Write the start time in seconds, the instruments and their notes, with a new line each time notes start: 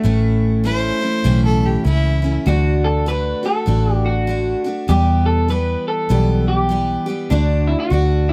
Already playing: clean electric guitar A3
0.03 fingered electric bass A1, steel-string acoustic guitar A2 E3 A3 C#4 E4
0.64 steel-string acoustic guitar E3 A3 C#4 E4, fiddle C5
1.01 steel-string acoustic guitar A3 C#4 E4
1.24 fingered electric bass B1, steel-string acoustic guitar A2 E3 A3 C#4 E4
1.45 fiddle A4
1.65 fiddle G4
1.85 fingered electric bass C#2, steel-string acoustic guitar E3 A3 C#4 E4, fiddle E4
2.22 steel-string acoustic guitar A3 C#4 E4
2.46 fingered electric bass D2, steel-string acoustic guitar D3 A3 D4 F#4, clean electric guitar F#4
2.84 clean electric guitar A4
3.06 steel-string acoustic guitar D3 A3 D4 F#4, clean electric guitar B4
3.43 steel-string acoustic guitar A3 D4 F#4, clean electric guitar A4
3.66 fingered electric bass A1, steel-string acoustic guitar D3 A3 D4 F#4
3.93 clean electric guitar G4
4.06 clean electric guitar F#4
4.27 steel-string acoustic guitar D3 A3 D4 F#4
4.64 steel-string acoustic guitar A3 D4 F#4
4.88 steel-string acoustic guitar E2 B2 E3 G3 B3 G4, fingered electric bass E2, clean electric guitar G4
5.26 clean electric guitar A4
5.48 steel-string acoustic guitar E3 G3 B3 G4, clean electric guitar B4
5.88 clean electric guitar A4
6.09 fingered electric bass B1, steel-string acoustic guitar E2 B2 E3 G3 B3 G4
6.48 clean electric guitar G4
6.69 steel-string acoustic guitar E3 G3 B3 G4
7.06 steel-string acoustic guitar E3 G3 B3 G4
7.30 fingered electric bass D2, steel-string acoustic guitar D3 A3 D4 F#4, clean electric guitar D4
7.67 clean electric guitar E4
7.80 clean electric guitar F#4
7.90 fingered electric bass D2, steel-string acoustic guitar D3 A3 D4 F#4
8.29 clean electric guitar E4